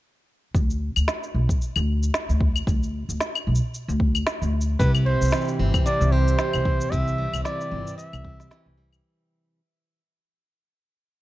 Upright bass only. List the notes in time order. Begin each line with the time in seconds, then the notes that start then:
0.55 D2
0.96 D2
1.34 B1
1.76 D2
2.29 D2
2.67 D2
3.09 D2
3.47 B1
3.88 D2
4.42 D2
4.80 C2
5.21 C2
5.60 G1
6.01 C2
6.54 C2
6.92 C2
7.33 C2
7.72 G1
8.13 C2
8.66 C2